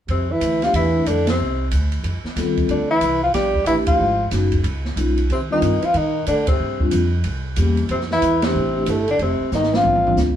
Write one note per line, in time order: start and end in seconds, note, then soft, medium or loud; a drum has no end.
0.08 0.40 F2 medium
0.08 0.32 C3 medium
0.08 0.33 C4 medium
0.08 ride soft
0.30 0.65 E3 medium
0.30 0.65 E4 loud
0.40 0.73 D2 medium
0.40 hi-hat pedal medium
0.40 ride medium
0.62 0.75 F3 medium
0.62 0.73 A3 medium
0.62 0.73 D4 medium
0.62 0.73 E4 medium
0.62 0.75 F4 medium
0.62 0.73 G4 medium
0.62 snare soft
0.62 ride soft
0.73 1.05 E2 medium
0.73 1.09 E3 medium
0.73 1.09 E4 medium
0.73 ride medium
0.95 1.06 A3 medium
0.95 1.06 D4 soft
0.95 1.06 E4 medium
1.06 1.38 F2 medium
1.06 1.28 D3 medium
1.06 1.28 D4 medium
1.06 hi-hat pedal soft
1.06 ride medium
1.27 1.70 C3 medium
1.27 1.70 C4 medium
1.27 snare medium
1.27 ride medium
1.39 1.71 C2 medium
1.71 2.03 D2 medium
1.71 hi-hat pedal medium
1.71 ride medium
1.92 ride soft
2.04 2.23 F2 medium
2.04 ride medium
2.24 muted upright bass stroke soft
2.24 snare soft
2.36 2.68 D#2 medium
2.36 2.69 G3 medium
2.36 2.70 C4 medium
2.36 2.70 F4 medium
2.36 2.70 A4 medium
2.36 snare soft
2.36 hi-hat pedal soft
2.36 ride medium
2.57 kick soft
2.57 ride soft
2.68 3.00 D2 medium
2.68 2.88 D3 medium
2.68 2.89 D4 medium
2.68 ride soft
2.90 3.21 E3 medium
2.90 3.20 E4 loud
3.01 3.33 C2 medium
3.01 hi-hat pedal medium
3.01 ride medium
3.23 3.33 F3 medium
3.23 3.34 F4 medium
3.33 3.65 A#1 medium
3.33 3.64 G3 medium
3.33 3.65 G4 medium
3.33 snare soft
3.33 ride medium
3.55 kick soft
3.66 3.98 A1 medium
3.66 3.76 E3 medium
3.66 3.99 A3 medium
3.66 4.00 D4 medium
3.66 3.99 E4 medium
3.66 3.76 E4 medium
3.66 4.00 G4 medium
3.66 hi-hat pedal medium
3.66 ride medium
3.87 4.29 F3 medium
3.87 4.29 F4 medium
3.87 kick medium
3.87 ride medium
3.99 4.31 G#1 medium
4.31 4.63 F#1 medium
4.31 4.50 G#3 soft
4.31 4.51 C#4 medium
4.31 4.50 D#4 medium
4.31 4.50 F#4 medium
4.31 snare soft
4.31 hi-hat pedal soft
4.31 ride medium
4.52 kick soft
4.52 ride soft
4.63 4.95 C#2 medium
4.63 ride medium
4.85 snare soft
4.96 5.28 B1 medium
4.96 5.15 G#3 medium
4.96 5.16 C#4 medium
4.96 5.15 D#4 medium
4.96 5.16 F4 medium
4.96 hi-hat pedal medium
4.96 ride medium
5.18 ride soft
5.30 5.61 D#2 medium
5.30 5.40 C3 medium
5.30 5.41 C4 medium
5.30 ride soft
5.49 5.85 D#3 medium
5.49 5.61 G3 medium
5.49 5.61 C4 medium
5.49 5.60 D4 medium
5.49 5.87 D#4 medium
5.49 5.61 F4 medium
5.62 5.81 G2 medium
5.62 hi-hat pedal soft
5.62 ride medium
5.82 5.97 F3 medium
5.82 5.98 F4 medium
5.82 muted upright bass stroke soft
5.82 ride soft
5.94 6.26 A#2 medium
5.94 6.27 D#3 medium
5.94 6.27 D#4 medium
5.94 ride medium
6.26 6.59 A2 medium
6.26 6.46 D3 medium
6.26 6.47 D4 medium
6.26 hi-hat pedal medium
6.26 ride medium
6.47 6.90 C3 medium
6.47 6.89 C4 medium
6.47 kick medium
6.47 ride medium
6.60 6.91 G2 medium
6.80 6.91 G3 medium
6.80 6.91 C4 medium
6.80 6.91 D4 medium
6.80 6.91 F4 medium
6.80 kick medium
6.91 7.24 F2 medium
6.91 hi-hat pedal medium
6.91 ride medium
7.24 7.56 C2 medium
7.24 ride medium
7.56 7.89 E2 medium
7.56 7.75 G3 medium
7.56 7.76 A#3 medium
7.56 7.76 C#4 soft
7.56 7.76 G4 medium
7.56 hi-hat pedal medium
7.56 ride medium
7.77 ride soft
7.89 8.21 F2 medium
7.89 7.99 C3 medium
7.89 8.00 C4 medium
7.89 ride soft
8.01 snare soft
8.10 8.44 E3 medium
8.10 8.46 E4 loud
8.10 snare soft
8.22 8.54 E2 medium
8.22 hi-hat pedal soft
8.22 ride medium
8.42 8.88 C3 medium
8.42 8.54 A3 medium
8.42 8.92 C4 medium
8.42 8.54 D4 medium
8.42 8.54 E4 medium
8.42 8.54 G4 medium
8.42 snare medium
8.42 ride medium
8.54 8.86 A1 medium
8.76 8.86 A3 medium
8.76 8.87 D4 medium
8.76 8.86 E4 medium
8.76 8.87 G4 medium
8.86 9.18 G1 medium
8.86 9.07 A2 medium
8.86 9.09 A3 medium
8.86 hi-hat pedal medium
8.86 ride medium
9.08 9.19 D3 medium
9.08 9.20 D4 medium
9.08 ride soft
9.19 9.39 F1 medium
9.19 9.50 C3 medium
9.19 9.52 C4 medium
9.19 ride soft
9.40 muted upright bass stroke soft
9.52 9.83 G#1 medium
9.52 9.76 D#3 medium
9.52 9.77 D#4 medium
9.52 snare soft
9.52 hi-hat pedal soft
9.63 snare soft
9.73 10.18 F3 medium
9.73 9.84 G3 medium
9.73 9.84 C4 medium
9.73 9.84 D4 medium
9.73 9.85 F4 medium
9.73 10.19 F4 medium
9.73 snare medium
9.84 10.16 A#1 medium
9.84 floor tom medium
9.95 floor tom medium
10.05 10.16 G3 medium
10.05 10.16 C4 medium
10.05 10.16 D4 medium
10.05 10.17 F4 medium
10.05 floor tom medium
10.16 10.36 D2 medium
10.16 snare medium
10.16 hi-hat pedal medium